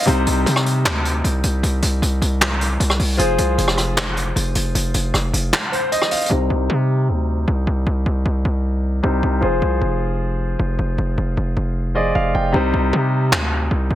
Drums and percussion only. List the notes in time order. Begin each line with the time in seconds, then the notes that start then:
0.03 closed hi-hat
0.07 closed hi-hat
0.26 closed hi-hat
0.47 closed hi-hat
0.56 cross-stick
0.66 closed hi-hat
0.85 snare, clap
1.05 closed hi-hat
1.24 closed hi-hat
1.43 closed hi-hat
1.63 closed hi-hat
1.82 closed hi-hat
2.02 closed hi-hat
2.22 closed hi-hat
2.41 snare, clap, closed hi-hat
2.61 closed hi-hat
2.80 closed hi-hat
2.90 cross-stick
2.99 open hi-hat
3.19 closed hi-hat
3.38 closed hi-hat
3.58 closed hi-hat
3.68 cross-stick
3.78 cross-stick, closed hi-hat
3.97 snare, clap, closed hi-hat
4.17 closed hi-hat
4.36 closed hi-hat
4.55 closed hi-hat
4.75 closed hi-hat
4.94 closed hi-hat
5.14 cross-stick, closed hi-hat
5.34 closed hi-hat
5.53 snare, clap, closed hi-hat
5.73 closed hi-hat
5.92 closed hi-hat
6.02 cross-stick
6.11 closed hi-hat, open hi-hat
6.16 closed hi-hat
6.21 closed hi-hat
6.26 closed hi-hat
13.32 snare, clap